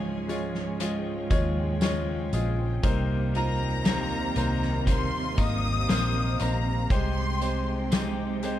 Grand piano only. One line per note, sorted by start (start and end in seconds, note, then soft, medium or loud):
0.00 0.25 C#3 medium
0.00 0.28 G#3 medium
0.00 0.29 F4 medium
0.00 2.34 G#4 medium
0.00 0.29 C#5 medium
0.28 0.77 G#3 medium
0.28 0.78 F4 medium
0.28 0.77 C#5 medium
0.80 1.28 G#3 medium
0.80 1.28 F4 medium
0.80 1.29 D#5 medium
1.30 1.79 G#3 loud
1.30 1.79 F4 medium
1.30 1.79 C#5 loud
1.81 2.30 G#3 loud
1.81 2.30 F4 loud
1.81 2.30 C#5 loud
2.33 2.81 G#3 medium
2.33 2.81 F4 medium
2.33 2.81 G#4 medium
2.84 4.32 C3 medium
2.84 3.32 A#3 medium
2.84 3.32 D#4 medium
2.84 3.32 C5 loud
3.35 3.83 A#3 medium
3.35 3.83 D#4 medium
3.35 3.84 F4 medium
3.87 4.34 A#3 medium
3.87 4.34 D#4 medium
3.87 4.35 C5 medium
4.36 4.84 A#3 medium
4.36 4.85 D#4 medium
4.36 4.85 C5 medium
4.88 5.36 A#3 medium
4.88 5.36 D#4 medium
4.88 5.36 C5 medium
5.38 5.86 A#3 medium
5.38 5.86 D#4 medium
5.38 5.87 D#5 medium
5.89 6.37 A#3 loud
5.89 6.37 D#4 medium
5.89 6.37 C5 loud
6.39 6.88 A#3 medium
6.39 6.88 D#4 medium
6.39 6.88 C5 medium
6.90 8.39 C3 medium
6.90 7.39 G#3 medium
6.90 7.39 G4 medium
6.90 7.39 C5 loud
7.41 7.89 G#3 medium
7.41 7.90 G4 medium
7.41 7.90 C5 medium
7.93 8.41 G#3 medium
7.93 8.41 G4 medium
7.93 8.41 C5 medium
8.43 8.59 G#3 medium
8.43 8.59 G4 medium
8.43 8.59 C5 medium